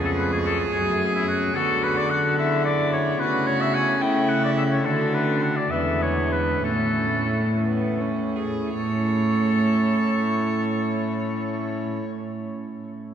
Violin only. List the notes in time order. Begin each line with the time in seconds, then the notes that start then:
Already playing: G#4
1.56 F#4
2.38 E4
3.20 F#4
4.01 E4
4.85 D4
5.72 B3
6.64 C#4
7.64 B3
8.00 C#4
8.36 G#4
8.74 C#5